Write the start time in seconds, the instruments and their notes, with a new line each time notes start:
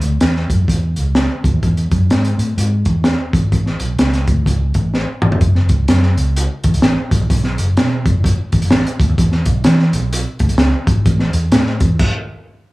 0.01 fingered electric bass D2, closed hi-hat
0.21 fingered electric bass E2, snare, closed hi-hat
0.36 snare
0.50 fingered electric bass F#2, kick, closed hi-hat
0.68 fingered electric bass E2, kick, closed hi-hat
0.96 fingered electric bass C#2, closed hi-hat
1.15 snare, closed hi-hat
1.44 fingered electric bass C#2, kick, closed hi-hat
1.54 fingered electric bass D#2
1.63 fingered electric bass E2, kick, closed hi-hat
1.77 closed hi-hat
1.91 fingered electric bass F#2, kick, closed hi-hat
2.10 fingered electric bass G#2, snare, closed hi-hat
2.25 closed hi-hat
2.38 fingered electric bass A2, closed hi-hat
2.57 fingered electric bass G#2, closed hi-hat
2.85 fingered electric bass E2, kick, closed hi-hat
3.04 snare, closed hi-hat
3.33 fingered electric bass E2, kick, closed hi-hat
3.42 fingered electric bass G#1
3.52 fingered electric bass A1, kick, closed hi-hat
3.66 snare
3.80 fingered electric bass B1, closed hi-hat
3.99 fingered electric bass C#2, snare, closed hi-hat
4.13 snare, closed hi-hat
4.27 fingered electric bass D2, kick, closed hi-hat
4.46 fingered electric bass C#2, kick, closed hi-hat
4.74 fingered electric bass A1, kick, closed hi-hat
4.94 snare
5.22 fingered electric bass A1, mid tom
5.31 fingered electric bass F1, floor tom
5.41 fingered electric bass F#1, kick, closed hi-hat
5.55 snare
5.69 fingered electric bass C#2, kick, closed hi-hat
5.88 fingered electric bass F#2, snare, closed hi-hat
6.03 snare
6.17 fingered electric bass C#2, closed hi-hat
6.36 closed hi-hat
6.64 fingered electric bass E2, kick, closed hi-hat
6.73 fingered electric bass C#2, closed hi-hat
6.82 fingered electric bass A1, snare, closed hi-hat
7.11 fingered electric bass A1, kick, closed hi-hat
7.21 fingered electric bass A#1
7.30 fingered electric bass B1, kick, closed hi-hat
7.44 snare
7.58 fingered electric bass F#1, closed hi-hat
7.77 fingered electric bass B2, snare, closed hi-hat
8.06 fingered electric bass F#1, kick, closed hi-hat
8.24 kick, closed hi-hat
8.52 fingered electric bass A1, kick, closed hi-hat
8.62 fingered electric bass F#1, closed hi-hat
8.71 fingered electric bass A1, snare, closed hi-hat
8.87 closed hi-hat
9.00 fingered electric bass D2, kick, closed hi-hat
9.09 fingered electric bass D#2
9.18 fingered electric bass E2, kick, closed hi-hat
9.32 snare
9.45 fingered electric bass B1, kick, closed hi-hat
9.64 fingered electric bass E3, snare, closed hi-hat
9.79 snare
9.93 fingered electric bass B1, closed hi-hat
10.13 closed hi-hat
10.39 fingered electric bass D2, kick, closed hi-hat
10.49 fingered electric bass B1, closed hi-hat
10.58 fingered electric bass C#2, snare, closed hi-hat
10.87 fingered electric bass G1, kick, closed hi-hat
10.96 fingered electric bass G#1
11.06 fingered electric bass A1, kick, closed hi-hat
11.19 snare
11.33 fingered electric bass E2, closed hi-hat
11.52 fingered electric bass A2, snare, closed hi-hat
11.66 snare
11.80 fingered electric bass E2, kick, closed hi-hat
11.99 kick, crash